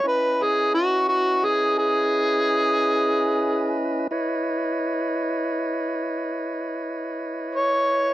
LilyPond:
<<
  \new Staff \with { instrumentName = "Tonewheel organ" } { \time 12/8 \key cis \minor \tempo 4. = 59 <cis' e' b' dis''>1. | <e' b' cis'' dis''>1. | }
  \new Staff \with { instrumentName = "Harmonica" } { \time 12/8 \key cis \minor b'8 gis'8 fis'8 fis'8 gis'8 gis'2. r8 | r1 r4 cis''4 | }
>>